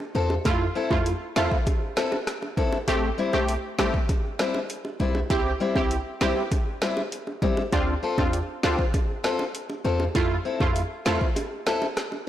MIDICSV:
0, 0, Header, 1, 6, 480
1, 0, Start_track
1, 0, Tempo, 606061
1, 360, Time_signature, 4, 2, 24, 8
1, 9732, End_track
2, 0, Start_track
2, 0, Title_t, "Steel-string acoustic guitar"
2, 0, Program_c, 0, 25
2, 116, Note_on_c, 0, 60, 87
2, 121, Note_on_c, 0, 65, 97
2, 126, Note_on_c, 0, 69, 97
2, 263, Note_off_c, 0, 60, 0
2, 266, Note_off_c, 0, 65, 0
2, 268, Note_off_c, 0, 69, 0
2, 597, Note_on_c, 0, 60, 88
2, 602, Note_on_c, 0, 64, 97
2, 606, Note_on_c, 0, 69, 94
2, 743, Note_off_c, 0, 60, 0
2, 746, Note_off_c, 0, 64, 0
2, 748, Note_off_c, 0, 69, 0
2, 1077, Note_on_c, 0, 60, 90
2, 1082, Note_on_c, 0, 64, 102
2, 1086, Note_on_c, 0, 69, 97
2, 1188, Note_off_c, 0, 69, 0
2, 1195, Note_off_c, 0, 64, 0
2, 1223, Note_off_c, 0, 60, 0
2, 1557, Note_on_c, 0, 60, 84
2, 1562, Note_on_c, 0, 64, 82
2, 1566, Note_on_c, 0, 69, 98
2, 1703, Note_off_c, 0, 60, 0
2, 1706, Note_off_c, 0, 64, 0
2, 1708, Note_off_c, 0, 69, 0
2, 2037, Note_on_c, 0, 60, 84
2, 2042, Note_on_c, 0, 64, 93
2, 2046, Note_on_c, 0, 69, 96
2, 2183, Note_off_c, 0, 60, 0
2, 2186, Note_off_c, 0, 64, 0
2, 2188, Note_off_c, 0, 69, 0
2, 2517, Note_on_c, 0, 55, 82
2, 2522, Note_on_c, 0, 60, 88
2, 2526, Note_on_c, 0, 64, 96
2, 2663, Note_off_c, 0, 55, 0
2, 2666, Note_off_c, 0, 60, 0
2, 2668, Note_off_c, 0, 64, 0
2, 2997, Note_on_c, 0, 55, 93
2, 3002, Note_on_c, 0, 60, 92
2, 3006, Note_on_c, 0, 64, 104
2, 3108, Note_off_c, 0, 64, 0
2, 3115, Note_off_c, 0, 60, 0
2, 3143, Note_off_c, 0, 55, 0
2, 3477, Note_on_c, 0, 55, 80
2, 3482, Note_on_c, 0, 60, 88
2, 3486, Note_on_c, 0, 64, 90
2, 3623, Note_off_c, 0, 55, 0
2, 3626, Note_off_c, 0, 60, 0
2, 3628, Note_off_c, 0, 64, 0
2, 3957, Note_on_c, 0, 55, 81
2, 3962, Note_on_c, 0, 60, 82
2, 3966, Note_on_c, 0, 64, 86
2, 4103, Note_off_c, 0, 55, 0
2, 4106, Note_off_c, 0, 60, 0
2, 4108, Note_off_c, 0, 64, 0
2, 4436, Note_on_c, 0, 55, 93
2, 4442, Note_on_c, 0, 60, 96
2, 4446, Note_on_c, 0, 64, 97
2, 4583, Note_off_c, 0, 55, 0
2, 4586, Note_off_c, 0, 60, 0
2, 4588, Note_off_c, 0, 64, 0
2, 4916, Note_on_c, 0, 55, 95
2, 4922, Note_on_c, 0, 60, 98
2, 4926, Note_on_c, 0, 64, 112
2, 5028, Note_off_c, 0, 64, 0
2, 5035, Note_off_c, 0, 60, 0
2, 5063, Note_off_c, 0, 55, 0
2, 5396, Note_on_c, 0, 55, 83
2, 5402, Note_on_c, 0, 60, 87
2, 5406, Note_on_c, 0, 64, 95
2, 5543, Note_off_c, 0, 55, 0
2, 5546, Note_off_c, 0, 60, 0
2, 5548, Note_off_c, 0, 64, 0
2, 5876, Note_on_c, 0, 55, 93
2, 5882, Note_on_c, 0, 60, 94
2, 5886, Note_on_c, 0, 64, 98
2, 6023, Note_off_c, 0, 55, 0
2, 6026, Note_off_c, 0, 60, 0
2, 6028, Note_off_c, 0, 64, 0
2, 6357, Note_on_c, 0, 60, 80
2, 6362, Note_on_c, 0, 65, 94
2, 6366, Note_on_c, 0, 69, 91
2, 6503, Note_off_c, 0, 60, 0
2, 6506, Note_off_c, 0, 65, 0
2, 6508, Note_off_c, 0, 69, 0
2, 6837, Note_on_c, 0, 60, 82
2, 6842, Note_on_c, 0, 65, 94
2, 6846, Note_on_c, 0, 69, 100
2, 6948, Note_off_c, 0, 69, 0
2, 6955, Note_off_c, 0, 65, 0
2, 6983, Note_off_c, 0, 60, 0
2, 7316, Note_on_c, 0, 60, 89
2, 7321, Note_on_c, 0, 65, 94
2, 7326, Note_on_c, 0, 69, 93
2, 7463, Note_off_c, 0, 60, 0
2, 7466, Note_off_c, 0, 65, 0
2, 7468, Note_off_c, 0, 69, 0
2, 7797, Note_on_c, 0, 60, 92
2, 7802, Note_on_c, 0, 65, 90
2, 7806, Note_on_c, 0, 69, 96
2, 7943, Note_off_c, 0, 60, 0
2, 7946, Note_off_c, 0, 65, 0
2, 7948, Note_off_c, 0, 69, 0
2, 8277, Note_on_c, 0, 60, 86
2, 8282, Note_on_c, 0, 64, 92
2, 8286, Note_on_c, 0, 69, 85
2, 8423, Note_off_c, 0, 60, 0
2, 8426, Note_off_c, 0, 64, 0
2, 8428, Note_off_c, 0, 69, 0
2, 8757, Note_on_c, 0, 60, 91
2, 8762, Note_on_c, 0, 64, 98
2, 8766, Note_on_c, 0, 69, 103
2, 8868, Note_off_c, 0, 69, 0
2, 8874, Note_off_c, 0, 64, 0
2, 8903, Note_off_c, 0, 60, 0
2, 9236, Note_on_c, 0, 60, 85
2, 9242, Note_on_c, 0, 64, 94
2, 9246, Note_on_c, 0, 69, 104
2, 9383, Note_off_c, 0, 60, 0
2, 9386, Note_off_c, 0, 64, 0
2, 9388, Note_off_c, 0, 69, 0
2, 9732, End_track
3, 0, Start_track
3, 0, Title_t, "Synth stab"
3, 0, Program_c, 1, 62
3, 356, Note_on_c, 1, 57, 92
3, 359, Note_on_c, 1, 64, 86
3, 362, Note_on_c, 1, 65, 102
3, 527, Note_off_c, 1, 57, 0
3, 528, Note_off_c, 1, 64, 0
3, 530, Note_off_c, 1, 65, 0
3, 717, Note_on_c, 1, 57, 82
3, 719, Note_on_c, 1, 64, 75
3, 722, Note_on_c, 1, 65, 87
3, 887, Note_off_c, 1, 57, 0
3, 888, Note_off_c, 1, 64, 0
3, 890, Note_off_c, 1, 65, 0
3, 1077, Note_on_c, 1, 57, 81
3, 1080, Note_on_c, 1, 64, 76
3, 1082, Note_on_c, 1, 65, 88
3, 1248, Note_off_c, 1, 57, 0
3, 1249, Note_off_c, 1, 64, 0
3, 1250, Note_off_c, 1, 65, 0
3, 2277, Note_on_c, 1, 57, 93
3, 2280, Note_on_c, 1, 60, 86
3, 2282, Note_on_c, 1, 67, 99
3, 2448, Note_off_c, 1, 57, 0
3, 2449, Note_off_c, 1, 60, 0
3, 2450, Note_off_c, 1, 67, 0
3, 2637, Note_on_c, 1, 57, 82
3, 2639, Note_on_c, 1, 60, 75
3, 2642, Note_on_c, 1, 67, 91
3, 2807, Note_off_c, 1, 57, 0
3, 2808, Note_off_c, 1, 60, 0
3, 2810, Note_off_c, 1, 67, 0
3, 2997, Note_on_c, 1, 57, 83
3, 2999, Note_on_c, 1, 60, 75
3, 3002, Note_on_c, 1, 67, 93
3, 3167, Note_off_c, 1, 57, 0
3, 3169, Note_off_c, 1, 60, 0
3, 3170, Note_off_c, 1, 67, 0
3, 4197, Note_on_c, 1, 60, 92
3, 4199, Note_on_c, 1, 64, 88
3, 4202, Note_on_c, 1, 67, 103
3, 4367, Note_off_c, 1, 60, 0
3, 4369, Note_off_c, 1, 64, 0
3, 4370, Note_off_c, 1, 67, 0
3, 4557, Note_on_c, 1, 60, 80
3, 4559, Note_on_c, 1, 64, 72
3, 4562, Note_on_c, 1, 67, 86
3, 4727, Note_off_c, 1, 60, 0
3, 4729, Note_off_c, 1, 64, 0
3, 4730, Note_off_c, 1, 67, 0
3, 4917, Note_on_c, 1, 60, 80
3, 4920, Note_on_c, 1, 64, 72
3, 4922, Note_on_c, 1, 67, 89
3, 5087, Note_off_c, 1, 60, 0
3, 5089, Note_off_c, 1, 64, 0
3, 5090, Note_off_c, 1, 67, 0
3, 6117, Note_on_c, 1, 60, 89
3, 6119, Note_on_c, 1, 62, 86
3, 6122, Note_on_c, 1, 65, 100
3, 6287, Note_off_c, 1, 60, 0
3, 6288, Note_off_c, 1, 62, 0
3, 6290, Note_off_c, 1, 65, 0
3, 6477, Note_on_c, 1, 60, 79
3, 6480, Note_on_c, 1, 62, 73
3, 6482, Note_on_c, 1, 65, 88
3, 6647, Note_off_c, 1, 60, 0
3, 6649, Note_off_c, 1, 62, 0
3, 6650, Note_off_c, 1, 65, 0
3, 6837, Note_on_c, 1, 60, 81
3, 6840, Note_on_c, 1, 62, 78
3, 6842, Note_on_c, 1, 65, 90
3, 7008, Note_off_c, 1, 60, 0
3, 7009, Note_off_c, 1, 62, 0
3, 7010, Note_off_c, 1, 65, 0
3, 8037, Note_on_c, 1, 57, 90
3, 8040, Note_on_c, 1, 64, 86
3, 8042, Note_on_c, 1, 65, 103
3, 8208, Note_off_c, 1, 57, 0
3, 8209, Note_off_c, 1, 64, 0
3, 8210, Note_off_c, 1, 65, 0
3, 8397, Note_on_c, 1, 57, 78
3, 8399, Note_on_c, 1, 64, 73
3, 8402, Note_on_c, 1, 65, 87
3, 8567, Note_off_c, 1, 57, 0
3, 8569, Note_off_c, 1, 64, 0
3, 8570, Note_off_c, 1, 65, 0
3, 8757, Note_on_c, 1, 57, 82
3, 8759, Note_on_c, 1, 64, 78
3, 8762, Note_on_c, 1, 65, 90
3, 8927, Note_off_c, 1, 57, 0
3, 8929, Note_off_c, 1, 64, 0
3, 8930, Note_off_c, 1, 65, 0
3, 9732, End_track
4, 0, Start_track
4, 0, Title_t, "808-style bass"
4, 0, Program_c, 2, 38
4, 119, Note_on_c, 2, 40, 98
4, 302, Note_off_c, 2, 40, 0
4, 359, Note_on_c, 2, 41, 121
4, 543, Note_off_c, 2, 41, 0
4, 718, Note_on_c, 2, 41, 93
4, 902, Note_off_c, 2, 41, 0
4, 1079, Note_on_c, 2, 40, 96
4, 1171, Note_off_c, 2, 40, 0
4, 2279, Note_on_c, 2, 33, 116
4, 2463, Note_off_c, 2, 33, 0
4, 2639, Note_on_c, 2, 35, 87
4, 2823, Note_off_c, 2, 35, 0
4, 2999, Note_on_c, 2, 33, 96
4, 3091, Note_off_c, 2, 33, 0
4, 3959, Note_on_c, 2, 35, 92
4, 4143, Note_off_c, 2, 35, 0
4, 4199, Note_on_c, 2, 36, 110
4, 4383, Note_off_c, 2, 36, 0
4, 4558, Note_on_c, 2, 36, 83
4, 4742, Note_off_c, 2, 36, 0
4, 4920, Note_on_c, 2, 35, 102
4, 5011, Note_off_c, 2, 35, 0
4, 6119, Note_on_c, 2, 38, 110
4, 6303, Note_off_c, 2, 38, 0
4, 6478, Note_on_c, 2, 40, 89
4, 6662, Note_off_c, 2, 40, 0
4, 6840, Note_on_c, 2, 38, 105
4, 6931, Note_off_c, 2, 38, 0
4, 7799, Note_on_c, 2, 40, 96
4, 7983, Note_off_c, 2, 40, 0
4, 8039, Note_on_c, 2, 41, 115
4, 8223, Note_off_c, 2, 41, 0
4, 8399, Note_on_c, 2, 41, 93
4, 8582, Note_off_c, 2, 41, 0
4, 8760, Note_on_c, 2, 40, 94
4, 8852, Note_off_c, 2, 40, 0
4, 9732, End_track
5, 0, Start_track
5, 0, Title_t, "Muted steel-string acoustic guitar strokes"
5, 1198, Note_on_c, 9, 29, 43
5, 1277, Note_off_c, 9, 29, 0
5, 3118, Note_on_c, 9, 29, 49
5, 3197, Note_off_c, 9, 29, 0
5, 5037, Note_on_c, 9, 29, 49
5, 5117, Note_off_c, 9, 29, 0
5, 6957, Note_on_c, 9, 29, 52
5, 7037, Note_off_c, 9, 29, 0
5, 8877, Note_on_c, 9, 29, 52
5, 8957, Note_off_c, 9, 29, 0
5, 9732, End_track
6, 0, Start_track
6, 0, Title_t, "Drums"
6, 0, Note_on_c, 9, 60, 57
6, 78, Note_off_c, 9, 60, 0
6, 121, Note_on_c, 9, 61, 73
6, 200, Note_off_c, 9, 61, 0
6, 237, Note_on_c, 9, 60, 74
6, 316, Note_off_c, 9, 60, 0
6, 359, Note_on_c, 9, 36, 106
6, 359, Note_on_c, 9, 42, 82
6, 359, Note_on_c, 9, 60, 77
6, 438, Note_off_c, 9, 36, 0
6, 438, Note_off_c, 9, 42, 0
6, 439, Note_off_c, 9, 60, 0
6, 718, Note_on_c, 9, 36, 101
6, 720, Note_on_c, 9, 60, 82
6, 797, Note_off_c, 9, 36, 0
6, 799, Note_off_c, 9, 60, 0
6, 840, Note_on_c, 9, 42, 76
6, 919, Note_off_c, 9, 42, 0
6, 1078, Note_on_c, 9, 38, 114
6, 1081, Note_on_c, 9, 60, 63
6, 1081, Note_on_c, 9, 61, 89
6, 1083, Note_on_c, 9, 37, 95
6, 1158, Note_off_c, 9, 38, 0
6, 1160, Note_off_c, 9, 60, 0
6, 1160, Note_off_c, 9, 61, 0
6, 1162, Note_off_c, 9, 37, 0
6, 1200, Note_on_c, 9, 36, 100
6, 1280, Note_off_c, 9, 36, 0
6, 1320, Note_on_c, 9, 36, 107
6, 1320, Note_on_c, 9, 60, 75
6, 1322, Note_on_c, 9, 42, 88
6, 1399, Note_off_c, 9, 36, 0
6, 1399, Note_off_c, 9, 60, 0
6, 1401, Note_off_c, 9, 42, 0
6, 1560, Note_on_c, 9, 38, 118
6, 1564, Note_on_c, 9, 37, 96
6, 1639, Note_off_c, 9, 38, 0
6, 1644, Note_off_c, 9, 37, 0
6, 1679, Note_on_c, 9, 60, 77
6, 1758, Note_off_c, 9, 60, 0
6, 1800, Note_on_c, 9, 37, 96
6, 1800, Note_on_c, 9, 38, 73
6, 1801, Note_on_c, 9, 42, 70
6, 1879, Note_off_c, 9, 37, 0
6, 1879, Note_off_c, 9, 38, 0
6, 1880, Note_off_c, 9, 42, 0
6, 1919, Note_on_c, 9, 60, 57
6, 1998, Note_off_c, 9, 60, 0
6, 2038, Note_on_c, 9, 36, 89
6, 2041, Note_on_c, 9, 61, 74
6, 2117, Note_off_c, 9, 36, 0
6, 2120, Note_off_c, 9, 61, 0
6, 2158, Note_on_c, 9, 60, 75
6, 2237, Note_off_c, 9, 60, 0
6, 2279, Note_on_c, 9, 42, 83
6, 2280, Note_on_c, 9, 60, 74
6, 2358, Note_off_c, 9, 42, 0
6, 2359, Note_off_c, 9, 60, 0
6, 2639, Note_on_c, 9, 60, 82
6, 2719, Note_off_c, 9, 60, 0
6, 2760, Note_on_c, 9, 42, 81
6, 2839, Note_off_c, 9, 42, 0
6, 2999, Note_on_c, 9, 38, 116
6, 3001, Note_on_c, 9, 60, 65
6, 3001, Note_on_c, 9, 61, 85
6, 3004, Note_on_c, 9, 37, 96
6, 3078, Note_off_c, 9, 38, 0
6, 3080, Note_off_c, 9, 60, 0
6, 3080, Note_off_c, 9, 61, 0
6, 3083, Note_off_c, 9, 37, 0
6, 3121, Note_on_c, 9, 36, 97
6, 3200, Note_off_c, 9, 36, 0
6, 3239, Note_on_c, 9, 60, 77
6, 3240, Note_on_c, 9, 36, 108
6, 3241, Note_on_c, 9, 42, 86
6, 3318, Note_off_c, 9, 60, 0
6, 3320, Note_off_c, 9, 36, 0
6, 3321, Note_off_c, 9, 42, 0
6, 3479, Note_on_c, 9, 38, 122
6, 3484, Note_on_c, 9, 37, 98
6, 3559, Note_off_c, 9, 38, 0
6, 3563, Note_off_c, 9, 37, 0
6, 3599, Note_on_c, 9, 60, 74
6, 3678, Note_off_c, 9, 60, 0
6, 3721, Note_on_c, 9, 42, 73
6, 3800, Note_off_c, 9, 42, 0
6, 3839, Note_on_c, 9, 60, 54
6, 3918, Note_off_c, 9, 60, 0
6, 3960, Note_on_c, 9, 61, 74
6, 4040, Note_off_c, 9, 61, 0
6, 4077, Note_on_c, 9, 60, 73
6, 4156, Note_off_c, 9, 60, 0
6, 4199, Note_on_c, 9, 36, 107
6, 4199, Note_on_c, 9, 42, 84
6, 4199, Note_on_c, 9, 60, 74
6, 4278, Note_off_c, 9, 36, 0
6, 4278, Note_off_c, 9, 42, 0
6, 4279, Note_off_c, 9, 60, 0
6, 4558, Note_on_c, 9, 36, 98
6, 4559, Note_on_c, 9, 60, 82
6, 4637, Note_off_c, 9, 36, 0
6, 4639, Note_off_c, 9, 60, 0
6, 4680, Note_on_c, 9, 42, 81
6, 4759, Note_off_c, 9, 42, 0
6, 4918, Note_on_c, 9, 38, 119
6, 4921, Note_on_c, 9, 60, 61
6, 4921, Note_on_c, 9, 61, 88
6, 4923, Note_on_c, 9, 37, 99
6, 4997, Note_off_c, 9, 38, 0
6, 5000, Note_off_c, 9, 60, 0
6, 5000, Note_off_c, 9, 61, 0
6, 5002, Note_off_c, 9, 37, 0
6, 5159, Note_on_c, 9, 60, 81
6, 5160, Note_on_c, 9, 36, 103
6, 5161, Note_on_c, 9, 42, 91
6, 5238, Note_off_c, 9, 60, 0
6, 5239, Note_off_c, 9, 36, 0
6, 5241, Note_off_c, 9, 42, 0
6, 5399, Note_on_c, 9, 38, 119
6, 5404, Note_on_c, 9, 37, 92
6, 5478, Note_off_c, 9, 38, 0
6, 5483, Note_off_c, 9, 37, 0
6, 5519, Note_on_c, 9, 60, 75
6, 5598, Note_off_c, 9, 60, 0
6, 5641, Note_on_c, 9, 42, 71
6, 5720, Note_off_c, 9, 42, 0
6, 5758, Note_on_c, 9, 60, 54
6, 5838, Note_off_c, 9, 60, 0
6, 5877, Note_on_c, 9, 36, 90
6, 5880, Note_on_c, 9, 61, 76
6, 5957, Note_off_c, 9, 36, 0
6, 5960, Note_off_c, 9, 61, 0
6, 5997, Note_on_c, 9, 60, 73
6, 6076, Note_off_c, 9, 60, 0
6, 6119, Note_on_c, 9, 36, 109
6, 6119, Note_on_c, 9, 42, 80
6, 6119, Note_on_c, 9, 60, 78
6, 6198, Note_off_c, 9, 36, 0
6, 6198, Note_off_c, 9, 42, 0
6, 6199, Note_off_c, 9, 60, 0
6, 6478, Note_on_c, 9, 36, 97
6, 6480, Note_on_c, 9, 60, 81
6, 6557, Note_off_c, 9, 36, 0
6, 6559, Note_off_c, 9, 60, 0
6, 6600, Note_on_c, 9, 42, 78
6, 6679, Note_off_c, 9, 42, 0
6, 6838, Note_on_c, 9, 38, 120
6, 6840, Note_on_c, 9, 60, 64
6, 6840, Note_on_c, 9, 61, 87
6, 6843, Note_on_c, 9, 37, 95
6, 6917, Note_off_c, 9, 38, 0
6, 6920, Note_off_c, 9, 60, 0
6, 6920, Note_off_c, 9, 61, 0
6, 6922, Note_off_c, 9, 37, 0
6, 6960, Note_on_c, 9, 36, 95
6, 7040, Note_off_c, 9, 36, 0
6, 7079, Note_on_c, 9, 60, 80
6, 7080, Note_on_c, 9, 36, 105
6, 7082, Note_on_c, 9, 42, 87
6, 7159, Note_off_c, 9, 36, 0
6, 7159, Note_off_c, 9, 60, 0
6, 7161, Note_off_c, 9, 42, 0
6, 7320, Note_on_c, 9, 38, 120
6, 7325, Note_on_c, 9, 37, 96
6, 7399, Note_off_c, 9, 38, 0
6, 7404, Note_off_c, 9, 37, 0
6, 7439, Note_on_c, 9, 60, 72
6, 7518, Note_off_c, 9, 60, 0
6, 7561, Note_on_c, 9, 42, 71
6, 7640, Note_off_c, 9, 42, 0
6, 7679, Note_on_c, 9, 60, 58
6, 7758, Note_off_c, 9, 60, 0
6, 7801, Note_on_c, 9, 61, 74
6, 7880, Note_off_c, 9, 61, 0
6, 7917, Note_on_c, 9, 60, 74
6, 7996, Note_off_c, 9, 60, 0
6, 8039, Note_on_c, 9, 36, 108
6, 8039, Note_on_c, 9, 42, 79
6, 8039, Note_on_c, 9, 60, 74
6, 8118, Note_off_c, 9, 36, 0
6, 8118, Note_off_c, 9, 42, 0
6, 8118, Note_off_c, 9, 60, 0
6, 8398, Note_on_c, 9, 36, 101
6, 8399, Note_on_c, 9, 60, 79
6, 8478, Note_off_c, 9, 36, 0
6, 8479, Note_off_c, 9, 60, 0
6, 8520, Note_on_c, 9, 42, 79
6, 8599, Note_off_c, 9, 42, 0
6, 8758, Note_on_c, 9, 38, 117
6, 8761, Note_on_c, 9, 60, 67
6, 8761, Note_on_c, 9, 61, 89
6, 8763, Note_on_c, 9, 37, 92
6, 8838, Note_off_c, 9, 38, 0
6, 8840, Note_off_c, 9, 60, 0
6, 8840, Note_off_c, 9, 61, 0
6, 8843, Note_off_c, 9, 37, 0
6, 8881, Note_on_c, 9, 36, 94
6, 8960, Note_off_c, 9, 36, 0
6, 8999, Note_on_c, 9, 60, 81
6, 9002, Note_on_c, 9, 42, 89
6, 9078, Note_off_c, 9, 60, 0
6, 9081, Note_off_c, 9, 42, 0
6, 9240, Note_on_c, 9, 38, 122
6, 9245, Note_on_c, 9, 37, 97
6, 9319, Note_off_c, 9, 38, 0
6, 9324, Note_off_c, 9, 37, 0
6, 9359, Note_on_c, 9, 60, 75
6, 9438, Note_off_c, 9, 60, 0
6, 9480, Note_on_c, 9, 37, 96
6, 9480, Note_on_c, 9, 38, 73
6, 9481, Note_on_c, 9, 42, 73
6, 9559, Note_off_c, 9, 37, 0
6, 9559, Note_off_c, 9, 38, 0
6, 9560, Note_off_c, 9, 42, 0
6, 9599, Note_on_c, 9, 60, 56
6, 9678, Note_off_c, 9, 60, 0
6, 9732, End_track
0, 0, End_of_file